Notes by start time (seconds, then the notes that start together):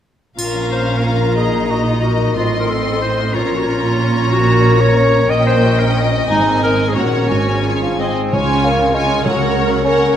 0.37 A#1 A#2 C#4 F4 F5 A#5, triangle
0.55 F3
0.71 F4 C5
0.88 C#5
0.97 A#4
1.04 F4 A#4
1.22 F4
1.37 A#2 D#4 G#4 D#5
1.55 F#3
1.70 D#4 F#4
1.86 F4 D#5
2.03 F#4 A#4
2.20 D#4
2.36 A1 A2 C4 F4 C6
2.52 A3
2.59 A#4
2.68 F4 A4
2.85 D#5
2.92 A4
3.02 C5
3.17 F4
3.34 A#1 A#2 C#4 F4 C#5 A#5
3.50 F3
3.56 F#4
3.66 F4
3.83 C#5
4.00 F4
4.16 C#4
4.32 A#2 F#4
4.47 A#3
4.64 A#4
4.80 C#5
4.96 A#4 C#5
5.13 C#4
5.30 A#1 A#2 C#4 D#5 G5
5.46 A#3 C5
5.62 G4
5.79 A#4 C#5
5.94 D#5
6.11 G4
6.28 G#1 G#2 C4 D#4 G#5
6.45 D#3
6.63 A#4
6.78 C5
6.88 G#4
6.96 A#1 A#2 C#4 F#4 C#5 F#5
7.13 F#4 C#5
7.29 G#1 G#2 F#4 G#5
7.47 G#3
7.65 F4 G#4
7.82 F3 C#5
7.98 G#2 C4 D#5
8.15 G#4 C5
8.32 C#2 C#3 C#4 F4 C#5 G#5
8.48 G#3
8.63 A#3 F4
8.79 G#4
8.94 G#3 F4 C#5 G#5
9.10 G#4
9.24 C#2 C#3 F#3 A#4 C#5 F#5
9.40 A#3
9.56 C#4
9.69 F#3 A#4
9.85 C#4 A#4 C#5 F#5
10.00 A#4